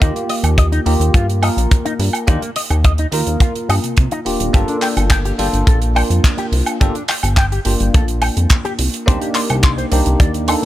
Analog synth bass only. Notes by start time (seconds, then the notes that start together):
0.02 D#2
0.44 D#2
0.86 D#2
1.00 D#2
1.14 G2
1.57 A#1
1.99 G2
2.28 D#2
2.70 D#2
3.12 D#2
3.27 D#2
3.69 G2
3.84 C3
3.98 C3
4.25 D#1
4.40 D#1
4.54 G1
4.97 G1
5.39 G1
5.53 G1
5.67 A#1
6.10 F2
6.52 C2
6.81 G1
7.23 G1
7.66 G1
7.81 G1
7.95 A#1
8.37 F2
8.79 C2
9.08 C2
9.50 C2
9.92 C2
10.06 C2
10.20 D#2